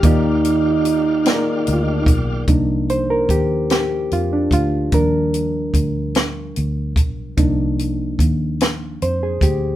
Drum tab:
HH |xxxxxx|xxxxxx|xxxxxx|xxxxxx|
SD |---o--|---o--|---o--|---o--|
BD |o----o|o-o--o|o-o--o|o-o--o|